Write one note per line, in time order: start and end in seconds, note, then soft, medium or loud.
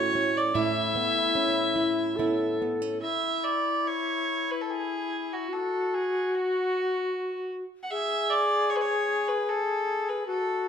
0.00 0.54 A2 medium
0.00 0.95 A3 medium
0.00 0.15 C#4 medium
0.00 0.55 E4 medium
0.00 0.31 F#4 medium
0.00 0.39 C#5 loud
0.15 0.98 C#4 medium
0.37 0.57 D5 medium
0.54 3.02 A2 medium
0.54 2.17 E4 medium
0.54 1.75 E4 medium
0.54 2.60 E5 medium
0.95 2.18 B3 medium
1.35 2.18 C#4 medium
1.76 2.19 E4 medium
2.16 2.62 B3 medium
2.16 2.61 C#4 medium
2.16 3.61 E4 medium
2.16 3.01 A4 medium
2.62 2.82 B3 medium
2.82 3.11 C#4 soft
3.02 5.50 E4 medium
3.02 3.46 E5 medium
3.44 3.89 D5 medium
3.87 4.52 C#5 medium
4.51 4.62 B4 medium
4.61 4.72 A4 medium
4.70 5.35 G#4 medium
5.33 5.54 F#4 medium
5.49 7.64 F#4 medium
5.49 5.96 A4 medium
5.95 6.37 G#4 medium
6.35 7.53 F#4 medium
7.83 7.92 F#5 medium
7.91 10.24 G#4 loud
7.91 8.32 E5 loud
8.30 8.71 D5 medium
8.70 8.77 C#5 medium
8.76 8.83 B4 medium
8.81 9.30 C#5 medium
9.28 9.51 B4 medium
9.50 10.10 A4 medium
10.09 10.28 B4 medium
10.27 10.68 F#4 medium
10.27 10.68 A4 medium